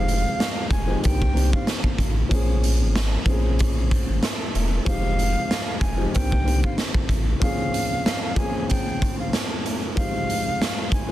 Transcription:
0.00 0.26 F1 loud
0.00 0.79 F3 medium
0.00 0.79 G#3 medium
0.00 0.80 C4 medium
0.00 0.80 D#4 medium
0.00 0.80 G4 loud
0.00 0.67 F5 loud
0.08 closed hi-hat medium
0.40 snare loud
0.40 snare medium
0.40 closed hi-hat medium
0.71 0.96 F1 medium
0.71 1.00 G#5 medium
0.71 kick medium
0.71 closed hi-hat medium
0.87 1.02 F3 medium
0.87 1.03 G#3 medium
0.87 1.02 C4 medium
0.87 1.03 D#4 medium
0.87 1.03 G4 loud
1.02 1.54 C2 loud
1.02 1.24 D#3 medium
1.02 1.24 A#3 medium
1.02 1.25 C4 medium
1.02 1.25 D4 medium
1.02 1.26 G4 loud
1.02 1.50 G5 medium
1.02 kick medium
1.02 closed hi-hat medium
1.22 kick loud
1.33 1.93 D#3 medium
1.33 1.94 A#3 medium
1.33 1.94 C4 medium
1.33 1.94 D4 medium
1.33 1.95 G4 loud
1.37 closed hi-hat medium
1.53 1.66 F5 medium
1.53 kick medium
1.67 snare loud
1.67 snare medium
1.67 closed hi-hat medium
1.84 kick medium
1.98 2.24 A1 medium
1.98 kick medium
1.98 closed hi-hat medium
2.29 2.83 A#1 loud
2.29 3.19 F3 medium
2.29 3.20 A#3 medium
2.29 3.20 C4 medium
2.29 3.20 C#4 medium
2.29 3.21 G#4 loud
2.29 kick loud
2.29 closed hi-hat medium
2.64 closed hi-hat medium
2.82 3.17 G#1 medium
2.96 snare loud
2.96 closed hi-hat medium
3.26 4.04 A#1 medium
3.26 4.75 F3 medium
3.26 4.75 A#3 medium
3.26 4.75 C4 medium
3.26 4.76 C#4 medium
3.26 4.76 G#4 loud
3.26 kick medium
3.26 closed hi-hat medium
3.59 kick medium
3.59 closed hi-hat medium
3.91 kick medium
3.91 closed hi-hat medium
4.09 4.20 G#1 medium
4.23 snare loud
4.23 snare medium
4.23 closed hi-hat medium
4.55 4.80 E1 medium
4.55 closed hi-hat medium
4.85 5.36 F1 loud
4.85 5.89 F3 medium
4.85 5.90 G#3 medium
4.85 5.90 C4 medium
4.85 5.90 D#4 medium
4.85 5.91 G4 loud
4.85 5.79 F5 loud
4.85 kick loud
4.85 closed hi-hat medium
5.19 closed hi-hat medium
5.51 snare loud
5.51 snare medium
5.51 closed hi-hat medium
5.81 6.07 F1 medium
5.81 6.10 G#5 medium
5.81 kick loud
5.81 closed hi-hat medium
5.98 6.13 F3 loud
5.98 6.13 G#3 medium
5.98 6.13 C4 medium
5.98 6.14 D#4 medium
5.98 6.14 G4 loud
6.13 6.65 C2 loud
6.13 6.35 D#3 medium
6.13 6.35 A#3 medium
6.13 6.36 C4 medium
6.13 6.36 D4 medium
6.13 6.36 G4 loud
6.13 6.61 G5 medium
6.13 kick medium
6.13 closed hi-hat medium
6.32 kick loud
6.43 7.04 D#3 medium
6.43 7.04 A#3 medium
6.43 7.05 C4 medium
6.43 7.05 D4 medium
6.43 7.05 G4 loud
6.47 closed hi-hat medium
6.64 6.77 F5 medium
6.64 kick medium
6.78 snare loud
6.78 snare medium
6.78 closed hi-hat medium
6.94 kick loud
7.09 7.34 A1 medium
7.09 kick medium
7.09 closed hi-hat medium
7.40 8.30 F3 medium
7.40 8.30 A#3 medium
7.40 8.30 C4 medium
7.40 8.31 C#4 medium
7.40 8.31 G#4 loud
7.40 8.34 F5 loud
7.40 kick loud
7.40 closed hi-hat medium
7.74 closed hi-hat medium
8.06 snare loud
8.06 snare medium
8.06 closed hi-hat medium
8.36 9.85 F3 medium
8.36 9.86 A#3 medium
8.36 9.86 C4 medium
8.36 9.86 C#4 medium
8.36 9.87 G#4 loud
8.36 8.66 G#5 medium
8.36 kick loud
8.36 closed hi-hat medium
8.68 9.16 G5 medium
8.68 kick medium
8.68 closed hi-hat medium
9.02 kick loud
9.02 closed hi-hat medium
9.19 9.32 F5 medium
9.33 snare loud
9.33 snare medium
9.33 closed hi-hat medium
9.66 closed hi-hat medium
9.96 11.00 F3 medium
9.96 11.00 G#3 medium
9.96 11.01 C4 medium
9.96 11.01 D#4 medium
9.96 11.01 G4 loud
9.96 10.89 F5 loud
9.96 kick loud
9.96 closed hi-hat medium
10.30 closed hi-hat medium
10.62 snare loud
10.62 snare medium
10.62 closed hi-hat medium
10.92 11.12 G#5 medium
10.92 kick loud
10.92 closed hi-hat medium
11.08 11.12 F3 loud

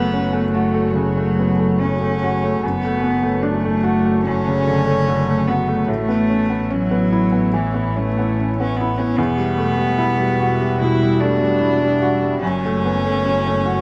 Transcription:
0.00 2.62 F#1 medium
0.00 0.90 F#2 medium
0.00 0.33 A3 medium
0.00 2.61 A3 medium
0.00 0.51 B3 loud
0.00 1.39 B3 medium
0.00 2.59 F#4 medium
0.00 2.62 C#5 medium
0.13 0.45 C#4 medium
0.33 0.65 A3 medium
0.52 0.94 A3 loud
0.52 0.86 F#4 medium
0.74 1.07 A3 medium
0.93 1.28 C#3 medium
0.93 1.81 F#3 loud
1.17 1.51 A3 medium
1.39 1.59 B3 soft
1.59 1.93 A3 medium
1.79 2.65 C#4 loud
1.79 2.14 C#4 medium
2.02 2.35 A3 soft
2.23 2.55 F#4 medium
2.44 2.64 A3 medium
2.63 5.90 F#1 medium
2.63 4.22 F#2 medium
2.63 5.84 A3 medium
2.63 3.45 B3 loud
2.63 5.85 F#4 medium
2.63 5.87 C#5 medium
2.85 3.16 A3 medium
3.03 3.23 B3 soft
3.23 3.56 A3 medium
3.43 4.25 A3 loud
3.43 3.76 D4 medium
3.65 3.97 A3 medium
3.84 4.17 F#4 medium
4.05 4.38 A3 medium
4.26 5.85 F#2 medium
4.26 5.49 C#4 loud
4.48 4.79 C#3 medium
4.67 4.87 D3 soft
4.87 5.19 A3 medium
5.07 5.40 D3 medium
5.28 5.61 A3 medium
5.47 5.91 B3 loud
5.47 5.81 F#4 medium
5.68 5.89 A3 medium
5.88 9.19 A1 medium
5.88 7.49 A2 medium
5.88 6.73 A3 loud
5.88 9.17 B3 medium
5.88 9.17 E4 medium
5.88 9.17 C#5 medium
6.09 6.41 B3 medium
6.30 6.50 C#4 medium
6.50 6.82 B3 medium
6.70 7.57 F#3 loud
6.70 7.03 C#4 medium
6.91 7.24 B3 medium
7.13 7.46 E4 medium
7.32 7.67 B3 medium
7.54 7.88 E3 medium
7.54 7.99 E3 medium
7.74 8.08 B3 medium
7.96 8.58 A3 loud
7.96 8.17 C#4 medium
8.19 8.50 B3 medium
8.39 8.71 C#4 medium
8.60 8.91 B3 medium
8.60 8.78 C#4 loud
8.77 9.00 B3 loud
8.77 9.11 E4 medium
8.98 9.18 B3 medium
8.98 9.19 C#4 loud
9.17 12.42 E1 medium
9.17 10.75 E2 medium
9.17 12.43 G3 medium
9.17 10.80 B3 loud
9.17 12.43 F#4 medium
9.17 12.42 E5 medium
9.37 9.69 G3 medium
9.58 9.77 A3 medium
9.77 10.09 G3 medium
9.98 10.30 E4 medium
10.18 10.50 G3 medium
10.40 10.71 F#4 medium
10.61 10.92 G3 medium
10.78 11.13 B2 medium
10.78 11.22 E4 loud
11.03 11.33 G3 medium
11.20 11.41 A3 medium
11.20 12.41 D4 loud
11.41 11.73 G3 medium
11.61 11.93 E4 medium
11.82 12.14 G3 medium
12.02 12.34 F#4 medium
12.23 12.42 G3 medium
12.41 13.81 F#1 medium
12.41 13.81 F#2 medium
12.41 13.81 A3 medium
12.41 13.81 C#4 loud
12.41 13.81 C#4 medium
12.41 13.81 C#5 medium
12.65 12.96 A3 medium
12.85 13.04 B3 medium
13.05 13.36 A3 medium
13.24 13.56 C#4 medium
13.47 13.77 A3 medium
13.65 13.81 F#4 medium

